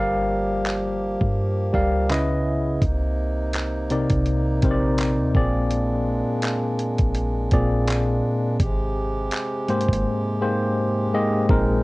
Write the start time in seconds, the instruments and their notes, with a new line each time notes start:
Already playing: 808-style bass G1, harmonium F3 A#3 G4, tine electric piano G3 G4 A#4 D5 F5
0.66 clap
1.21 808-style bass G2, kick
1.73 808-style bass C#2, tine electric piano G3 G4 A#4 D5 F5, kick
2.09 tine electric piano C#3 C#4 E4 B4 D#5, harmonium C#3 B3 E4, clap
2.82 808-style bass C2, harmonium C3 A#3 D#4, kick, closed hi-hat
3.53 clap, closed hi-hat
3.90 tine electric piano C3 C4 D#4 A#4 D5, closed hi-hat
4.09 808-style bass C2, kick, closed hi-hat
4.26 closed hi-hat
4.62 808-style bass A#1, tine electric piano C3 C4 D#4 A#4 C5, kick, closed hi-hat
4.71 tine electric piano D5
4.98 clap, closed hi-hat
5.18 808-style bass D#2
5.35 808-style bass A#1, harmonium A#2 G#3 D4, tine electric piano A#2 A#3 C4 G#4 D5, kick
5.71 closed hi-hat
6.42 clap, closed hi-hat
6.79 closed hi-hat
6.98 808-style bass A#1, kick, closed hi-hat
7.15 closed hi-hat
7.51 808-style bass A#1, tine electric piano A#2 A#3 C4 G#4 D5, kick, closed hi-hat
7.87 clap, closed hi-hat
8.60 808-style bass G#1, harmonium C3 G#3 G4, kick, closed hi-hat
9.31 clap, closed hi-hat
9.68 tine electric piano G#2 G#3 A#3 G4 C5, closed hi-hat
9.81 closed hi-hat
9.89 808-style bass G#1, kick
9.93 closed hi-hat
10.41 tine electric piano G#2 G#3 A#3 G4 C5
11.13 tine electric piano G#2 G#3 A#3 G4 D#5
11.49 808-style bass A#1, tine electric piano A#2 G#3 C4 D#4 A#4, harmonium C3 G#3 D#4, kick